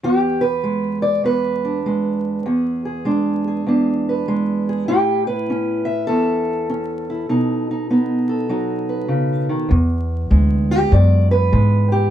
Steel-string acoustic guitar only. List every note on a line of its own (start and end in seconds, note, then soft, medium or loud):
0.03 1.23 E2 medium
0.03 0.43 G4 medium
0.41 1.02 B4 medium
0.64 1.85 G#3 medium
1.02 1.24 D5 medium
1.24 2.44 E2 medium
1.24 3.67 B4 medium
1.64 2.44 D4 soft
1.86 2.44 G#3 medium
2.46 3.65 E2 medium
2.46 2.84 G#4 soft
2.85 3.46 G#4 soft
3.05 4.27 G#3 medium
3.05 3.67 D4 soft
3.48 4.68 G#4 soft
3.66 4.88 E2 medium
3.66 4.86 D4 soft
4.09 4.87 B4 soft
4.28 4.86 G#3 medium
4.69 4.87 G#4 soft
4.88 6.10 A2 medium
4.88 5.48 C#4 soft
4.88 7.08 E4 soft
4.88 5.27 G4 medium
5.27 6.07 B4 medium
5.50 6.68 C#4 medium
5.85 6.68 E5 medium
6.07 7.29 E2 medium
6.07 8.28 A4 medium
6.70 7.28 C#4 medium
7.10 7.28 E4 soft
7.29 9.68 B2 medium
7.29 7.69 D#4 soft
7.71 7.89 D#4 soft
7.90 9.49 B3 medium
7.90 8.49 D#4 soft
8.29 9.69 A4 soft
8.49 9.08 F#3 medium
8.49 9.69 D#4 soft
8.89 9.69 B4 soft
9.08 9.49 C#3 medium
9.49 9.71 D#3 medium
9.69 10.89 E2 medium
10.30 11.51 G#3 medium
10.71 10.93 G4 medium
10.90 12.10 E2 medium
10.90 11.31 D5 medium
11.31 12.10 B4 medium
11.52 12.10 G#3 medium
11.92 12.10 G4 medium